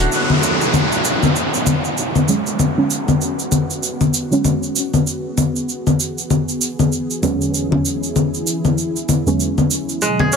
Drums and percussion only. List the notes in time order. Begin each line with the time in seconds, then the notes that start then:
0.12 shaker
0.30 low conga
0.43 shaker
0.61 shaker
0.74 low conga, shaker
0.92 shaker
1.05 shaker
1.23 low conga, shaker
1.36 shaker
1.54 shaker
1.66 low conga, shaker
1.84 shaker
1.97 shaker
2.16 low conga, shaker
2.28 shaker
2.46 shaker
2.59 low conga, shaker
2.90 shaker
3.08 low conga, shaker
3.21 shaker
3.39 shaker
3.52 low conga, shaker
3.70 shaker
3.83 shaker
4.01 low conga, shaker
4.14 shaker
4.32 shaker
4.45 low conga, shaker
4.63 shaker
4.76 shaker
4.94 low conga, shaker
5.07 shaker
5.38 low conga, shaker
5.56 shaker
5.69 shaker
5.87 low conga, shaker
6.00 shaker
6.18 shaker
6.30 low conga, shaker
6.48 shaker
6.61 shaker
6.79 low conga, shaker
6.92 shaker
7.10 shaker
7.23 low conga, shaker
7.41 shaker
7.54 shaker
7.72 low conga
7.85 shaker
8.03 shaker
8.16 low conga, shaker
8.34 shaker
8.47 shaker
8.65 low conga, shaker
8.78 shaker
8.96 shaker
9.09 low conga, shaker
9.27 shaker
9.40 shaker
9.58 low conga, shaker
9.71 shaker
9.89 shaker
10.01 shaker
10.19 low conga
10.32 shaker